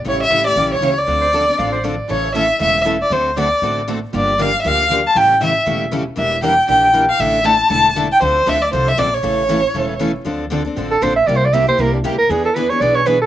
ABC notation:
X:1
M:4/4
L:1/16
Q:"Swing" 1/4=235
K:Dm
V:1 name="Violin"
^c2 e4 d4 c4 d2- | d12 z4 | ^c4 e4 e4 z2 d2 | c4 d6 z6 |
d4 f3 e f4 z2 a2 | g4 e6 z6 | e4 g4 g4 z2 f2 | e4 a4 a4 z2 g2 |
c4 e2 d2 c2 e2 d2 ^c2- | ^c12 z4 | z16 | z16 |
z16 |]
V:2 name="Soprano saxophone"
z16 | z2 c2 d4 f2 c2 d4 | z16 | z16 |
z16 | z16 | z16 | z16 |
z16 | z16 | z8 z2 A2 c2 e2 | (3d2 c2 d2 e2 c2 B2 D2 G2 B2 |
^G2 A2 =B2 ^c2 d2 c2 B2 A2 |]
V:3 name="Steel-string acoustic guitar"
[E,G,^CEA]2 z2 [E,G,CEA]2 z2 [E,G,CEA]2 z2 [E,G,CEA]2 z2 | [D,F,CDA]2 z2 [D,F,CDA]2 z2 [D,F,CDA]2 z2 [D,F,CDA]2 z2 | [E,A,^CEA]2 z2 [E,A,CEA]2 z2 [E,A,CEA]2 z2 [E,A,CEA]2 z2 | [D,A,C^FA]2 z2 [D,A,CFA]2 z2 [D,A,CFA]2 z2 [D,A,CFA]2 z2 |
[D,F,B,DG]2 z2 [D,F,B,DG]2 z2 [D,F,B,DG]2 z2 [D,F,B,DG]2 z2 | [E,G,^CEA]2 z2 [E,G,CEA]2 z2 [E,G,CEA]2 z2 [E,G,CEA]2 z2 | [E,G,DEB]2 z2 [E,G,DEB]2 z2 [E,G,DEB]2 z2 [E,G,DEB]2 z2 | [D,A,DEA]2 z2 [D,A,DEA]2 z2 [D,A,DEA]2 z2 [D,A,DEA]2 z2 |
[D,F,CDA]2 z2 [D,F,CDA]2 z2 [D,F,CDA]2 z2 [D,F,CDA]2 z2 | [E,A,^CEA]2 z2 [E,A,CEA]2 z2 [E,A,CEA]2 z2 [E,A,CEA]2 z2 | [D,F,CDA]2 z2 [D,F,CDA]2 z2 [D,F,CDA]2 z2 [D,F,CDA]2 z2 | [C,G,B,EG]2 z2 [C,G,B,EG]2 z2 [C,G,B,EG]2 z2 [C,G,B,EG]2 z2 |
[E,=B,D^G=B]2 z2 [E,B,DGB]2 z2 [E,B,DGB]2 z2 [E,B,DGB]2 z2 |]
V:4 name="Steel-string acoustic guitar"
[^C,E,A,^CG]2 z2 [C,E,A,CG]2 [A,CG]2 [C,E,A,CG]2 z2 [C,E,A,CG]2 z2 | [D,F,CDA]2 z2 [D,F,CDA]2 [CDA]2 [D,F,CDA]2 z2 [D,F,CDA]2 z2 | [^C,E,A,^CA]2 z2 [C,E,A,CA]2 z2 [C,E,A,CA]2 z2 [C,E,A,CA]2 z2 | [D,A,C^FA]2 z2 [D,A,CFA]2 z2 [D,A,CFA]2 z2 [D,A,CFA]2 z2 |
[D,F,B,DG]2 z2 [D,F,B,DG]2 z2 [D,F,B,DG]2 z2 [D,F,B,DG]2 z2 | [^C,E,A,^CG]2 z2 [C,E,A,CG]2 z2 [C,E,A,CG]2 z2 [C,E,A,CG]2 z2 | [E,B,DG]2 z2 [E,B,DG]2 z2 [E,B,DG]2 z2 [E,B,DG]2 z2 | [D,A,DEA]2 z2 [D,A,DEA]2 z2 [D,A,DEA]2 z2 [D,A,DEA]2 z2 |
[D,F,CDA]2 z2 [D,F,CDA]2 z2 [D,F,CDA]2 z2 [D,F,CDA]2 z2 | [^C,E,A,^CA]2 z2 [C,E,A,CA]2 z2 [C,E,A,CA]2 z2 [C,E,A,CA]2 z2 | [D,F,CDA]2 z2 [D,F,CDA]2 [CDA]2 [D,F,CDA]2 z2 [D,F,CDA]2 z2 | [C,G,B,EG]2 z2 [C,G,B,EG]2 [B,EG]2 [C,G,B,EG]2 z2 [C,G,B,EG]2 z2 |
[E,=B,D^G]2 z2 [E,B,DG]2 [B,DG]2 [E,B,DG]2 z2 [E,B,DG]2 z2 |]
V:5 name="Upright bass" clef=bass
A,,,4 A,,,4 B,,,4 ^C,,4 | D,,8 A,,,8 | A,,,8 E,,,8 | D,,8 A,,,8 |
G,,,8 D,,8 | A,,,8 E,,,8 | E,,,8 B,,,8 | A,,,8 E,,,8 |
D,,4 D,,4 C,,4 B,,,4 | A,,,8 E,,,8 | D,,8 A,,,4 B,,,4 | C,,8 C,,4 D,,4 |
E,,8 =B,,,8 |]